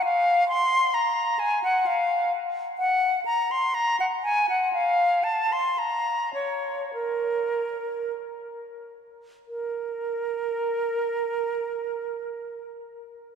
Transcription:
0.04 0.48 F5 medium
0.49 0.96 C6 medium
0.94 1.41 A#5 medium
1.39 1.62 G#5 medium
1.64 1.88 F#5 medium
1.86 2.32 F5 medium
2.78 3.21 F#5 loud
3.26 3.53 A#5 medium
3.51 3.76 C6 medium
3.74 3.98 A#5 loud
4.00 4.06 F#5 medium
4.23 4.47 G#5 medium
4.49 4.73 F#5 medium
4.73 5.25 F5 medium
5.24 5.54 A5 medium
5.52 5.80 C6 medium
5.78 6.33 A#5 medium
6.34 6.91 C#5 medium
6.94 8.13 A#4 medium
9.48 12.71 A#4 medium

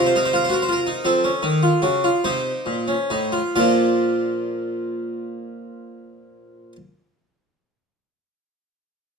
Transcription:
0.00 1.03 C3 medium
0.00 0.14 F4 medium
0.06 0.16 C5 medium
0.16 0.33 D#4 medium
0.16 0.25 A#4 medium
0.25 0.35 C5 medium
0.33 0.50 F4 medium
0.33 0.44 A#4 medium
0.44 0.54 C5 medium
0.49 0.68 F#4 medium
0.49 0.62 A#4 medium
0.62 0.72 C5 medium
0.69 0.87 F4 medium
0.69 1.05 A#4 medium
0.87 1.05 D#4 medium
1.05 1.29 F3 medium
1.05 1.24 C4 medium
1.05 2.21 A4 medium
1.24 1.43 C#4 medium
1.42 1.67 D#3 medium
1.42 1.62 D#4 medium
1.63 1.83 F4 medium
1.82 2.08 C#3 medium
1.82 2.02 F#4 medium
2.04 2.24 F4 medium
2.24 2.51 C3 medium
2.24 2.86 D#4 medium
2.24 3.51 C5 medium
2.66 2.93 A#2 medium
2.88 3.09 C#4 medium
3.10 3.38 A2 medium
3.10 3.32 D#4 medium
3.32 3.55 F4 medium
3.56 6.73 A#2 medium
3.56 6.76 F3 medium
3.56 6.76 A#3 medium
3.56 6.72 F4 medium
3.56 6.72 D5 medium

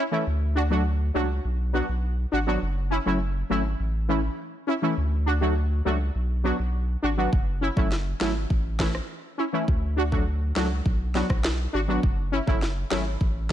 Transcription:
0.11 0.23 E3 medium
0.11 0.24 A3 medium
0.11 0.24 C#4 medium
0.11 0.24 E4 medium
0.27 1.11 D2 loud
0.55 0.62 D4 medium
0.55 0.62 F#4 loud
0.70 0.82 F#3 medium
0.70 0.83 A3 medium
0.70 0.83 D4 medium
0.70 0.83 F#4 medium
1.14 1.40 C#2 medium
1.14 1.26 F#3 medium
1.14 1.26 A3 medium
1.14 1.27 D4 medium
1.14 1.27 F#4 loud
1.44 1.82 B1 loud
1.73 1.85 F#3 medium
1.73 1.85 B3 medium
1.73 1.86 D4 medium
1.73 1.86 F#4 loud
1.89 2.26 B1 medium
2.32 2.57 G#1 loud
2.32 2.38 D4 medium
2.32 2.39 F#4 loud
2.46 2.59 F#3 medium
2.46 2.59 B3 medium
2.46 2.59 D4 medium
2.46 2.59 F#4 medium
2.62 2.99 F#1 loud
2.90 2.97 C#4 medium
2.90 2.98 E4 loud
3.06 3.43 F#1 loud
3.06 3.18 F#3 medium
3.06 3.18 A3 medium
3.06 3.18 C#4 medium
3.06 3.18 E4 medium
3.50 3.75 G#1 medium
3.50 3.62 F#3 medium
3.50 3.62 A3 medium
3.50 3.62 C#4 medium
3.50 3.62 E4 loud
3.80 4.29 A1 loud
4.08 4.20 E3 medium
4.08 4.21 A3 medium
4.08 4.21 C#4 medium
4.08 4.21 E4 loud
4.67 4.73 C#4 medium
4.67 4.74 E4 loud
4.82 4.94 E3 medium
4.82 4.94 A3 medium
4.82 4.94 C#4 medium
4.82 4.95 E4 medium
4.97 5.82 D2 loud
5.26 5.32 D4 medium
5.26 5.33 F#4 loud
5.41 5.53 F#3 medium
5.41 5.53 A3 medium
5.41 5.53 D4 medium
5.41 5.54 F#4 medium
5.85 6.10 C#2 medium
5.85 5.97 F#3 medium
5.85 5.97 A3 medium
5.85 5.98 D4 medium
5.85 5.98 F#4 loud
6.15 6.52 B1 loud
6.44 6.56 F#3 medium
6.44 6.56 B3 medium
6.44 6.56 D4 medium
6.44 6.57 F#4 medium
6.59 6.96 B1 medium
7.03 7.28 G#1 loud
7.03 7.09 D4 medium
7.03 7.09 F#4 loud
7.17 7.29 F#3 medium
7.17 7.29 B3 medium
7.17 7.30 D4 medium
7.17 7.30 F#4 medium
7.33 7.70 F#1 loud
7.33 kick loud
7.61 7.67 C#4 medium
7.61 7.68 E4 loud
7.76 8.14 F#1 loud
7.76 7.88 F#3 medium
7.76 7.88 A3 medium
7.76 7.89 C#4 medium
7.76 7.89 E4 medium
7.76 kick loud
7.92 snare medium
8.20 8.46 G#1 medium
8.20 8.32 F#3 medium
8.20 8.33 A3 medium
8.20 8.33 C#4 medium
8.20 8.33 E4 loud
8.20 snare loud
8.50 9.00 A1 loud
8.50 kick loud
8.79 8.91 E3 medium
8.79 8.91 A3 medium
8.79 8.92 C#4 medium
8.79 8.92 E4 medium
8.79 kick medium
8.79 snare loud
8.95 cross-stick medium
9.38 9.44 C#4 medium
9.38 9.45 E4 loud
9.52 9.65 E3 medium
9.52 9.65 A3 medium
9.52 9.65 C#4 medium
9.52 9.65 E4 loud
9.68 10.52 D2 loud
9.68 kick loud
9.96 10.03 D4 medium
9.96 10.04 F#4 loud
10.11 10.23 F#3 medium
10.11 10.24 A3 medium
10.11 10.24 D4 medium
10.11 10.24 F#4 medium
10.11 kick loud
10.56 10.81 C#2 medium
10.56 10.68 F#3 medium
10.56 10.68 A3 medium
10.56 10.68 D4 medium
10.56 10.68 F#4 loud
10.56 snare loud
10.86 11.23 B1 medium
10.86 kick loud
11.14 11.26 F#3 medium
11.14 11.27 B3 medium
11.14 11.27 D4 medium
11.14 11.27 F#4 medium
11.14 snare medium
11.30 11.67 B1 medium
11.30 kick loud
11.30 cross-stick medium
11.44 snare loud
11.73 11.99 G#1 loud
11.73 11.79 D4 medium
11.73 11.80 F#4 loud
11.88 12.00 F#3 medium
11.88 12.00 B3 medium
11.88 12.00 D4 medium
11.88 12.01 F#4 medium
12.03 12.41 F#1 loud
12.03 kick loud
12.32 12.38 C#4 medium
12.32 12.39 E4 loud
12.47 12.85 F#1 loud
12.47 12.59 F#3 medium
12.47 12.59 A3 medium
12.47 12.59 C#4 medium
12.47 12.59 E4 loud
12.47 kick loud
12.62 snare medium
12.91 13.16 G#1 medium
12.91 13.03 F#3 medium
12.91 13.03 A3 medium
12.91 13.03 C#4 medium
12.91 13.03 E4 loud
12.91 snare loud
13.21 13.52 A1 loud
13.21 kick loud

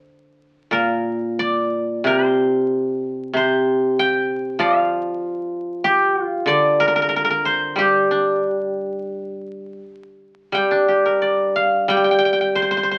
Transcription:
0.00 0.68 C5 medium
0.71 2.04 A#2 soft
0.71 2.07 A#4 medium
1.39 3.24 D5 medium
2.04 3.32 C3 medium
2.04 2.25 A#4 medium
2.25 3.36 C5 medium
3.33 4.60 C3 medium
3.33 5.35 C5 medium
3.99 5.55 G5 medium
4.59 6.48 F3 medium
4.59 6.27 F5 medium
5.84 6.23 G4 medium
6.23 7.78 F4 medium
6.46 8.42 D3 medium
6.46 8.32 D5 medium
6.80 6.87 A#4 medium
6.88 6.95 A#4 medium
6.96 7.02 A#4 medium
7.02 7.08 A#4 medium
7.09 7.16 A#4 medium
7.16 7.24 A#4 medium
7.25 7.30 A#4 medium
7.30 9.43 A#4 medium
7.45 9.43 C5 medium
7.76 9.79 G3 medium
7.76 10.14 G4 medium
8.11 9.44 D4 soft
10.52 11.87 G3 medium
10.52 11.89 G5 medium
10.71 12.06 D4 soft
10.88 12.23 G4 soft
11.06 12.39 A#4 soft
11.22 12.55 D5 soft
11.56 12.98 F5 medium
11.88 12.98 G3 medium
11.88 11.96 G5 medium
11.97 12.04 G5 medium
12.04 12.11 G5 medium
12.11 12.18 G5 medium
12.19 12.25 G5 medium
12.25 12.32 G5 medium
12.33 12.40 G5 medium
12.41 12.98 G5 medium
12.55 12.62 C5 medium
12.62 12.70 C5 medium
12.71 12.77 C5 medium
12.77 12.83 C5 medium
12.83 12.91 C5 medium
12.91 12.98 C5 medium

